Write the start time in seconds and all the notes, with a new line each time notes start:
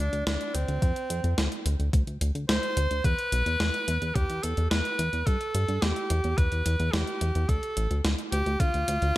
0.00 D4
0.13 D2, closed hi-hat
0.27 D2 D4, snare, closed hi-hat
0.41 closed hi-hat
0.55 D2 C4, closed hi-hat
0.68 D2, closed hi-hat
0.82 F2, kick, closed hi-hat
0.96 closed hi-hat
1.10 F2, closed hi-hat
1.24 F2, closed hi-hat
1.38 D2, snare, closed hi-hat
1.52 closed hi-hat
1.66 D2, closed hi-hat
1.79 D2, closed hi-hat
1.93 D2, kick, closed hi-hat
2.07 D2, closed hi-hat
2.21 D2, closed hi-hat
2.35 D2, closed hi-hat
2.49 D2 C5, snare, closed hi-hat
2.63 closed hi-hat
2.77 D2, closed hi-hat
2.91 D2, closed hi-hat
3.04 E2 B4, kick, closed hi-hat
3.19 closed hi-hat
3.32 B1, closed hi-hat
3.46 E2, closed hi-hat
3.60 E2, snare, closed hi-hat
3.74 closed hi-hat
3.88 E2, closed hi-hat
4.02 E2, closed hi-hat
4.15 E2 G4, kick, closed hi-hat
4.30 E2, closed hi-hat
4.43 E2 A4, closed hi-hat
4.57 E2, closed hi-hat
4.71 E2 B4, snare, closed hi-hat
4.85 closed hi-hat
4.99 E2, closed hi-hat
5.13 E2, closed hi-hat
5.26 G2 A4, kick, closed hi-hat
5.41 closed hi-hat
5.55 G2, closed hi-hat
5.68 G2, closed hi-hat
5.82 E2 G4, snare, closed hi-hat
5.96 closed hi-hat
6.10 E2, closed hi-hat
6.24 E2, closed hi-hat
6.38 E2 B4, kick, closed hi-hat
6.52 E2, closed hi-hat
6.66 E2, closed hi-hat
6.80 E2, closed hi-hat
6.93 E2 G4, snare, closed hi-hat
7.07 closed hi-hat
7.21 E2, closed hi-hat
7.35 E2, closed hi-hat
7.49 D2 A4, kick, closed hi-hat
7.63 closed hi-hat
7.77 A1, closed hi-hat
7.91 D2, closed hi-hat
8.05 D2, snare, closed hi-hat
8.19 closed hi-hat
8.32 D2 G4, closed hi-hat
8.46 D2, closed hi-hat
8.60 D2 F4, kick, closed hi-hat
8.74 D2, closed hi-hat
8.88 D2, closed hi-hat
9.02 D2, closed hi-hat